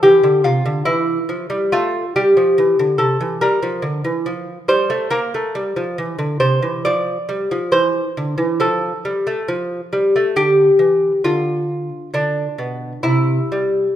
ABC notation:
X:1
M:4/4
L:1/16
Q:1/4=69
K:F
V:1 name="Lute"
G2 F2 E4 F2 G4 A2 | B6 c2 B6 c2 | d4 c4 A2 z6 | G4 F4 D4 E4 |]
V:2 name="Lute" clef=bass
E, D, C, D, E,2 F, G, A,2 G, F, E, D, C, E, | G, F, D, E, F,2 G, A, B, A, G, F, E, D, C, E, | F,2 G, F, E,2 D, E, F,2 G, A, F,2 G, A, | D,2 E,2 D,4 D,2 =B,,2 C,2 G,2 |]